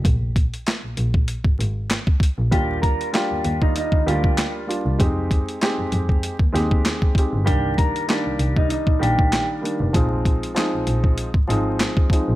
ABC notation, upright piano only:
X:1
M:4/4
L:1/8
Q:"Swing 16ths" 1/4=97
K:Cm
V:1 name="Upright piano"
z8 | [G,B,DF]2 [G,B,DF]3 [G,B,DF]2 [G,B,DF] | [A,CEG]2 [A,CEG]2 z [A,CEG]2 [A,CEG] | [E,G,B,D]2 [E,G,B,D]3 [E,G,B,D]2 [E,G,B,D] |
[F,A,CE]2 [F,A,CE]2 z [F,A,CE]2 [F,A,CE] |]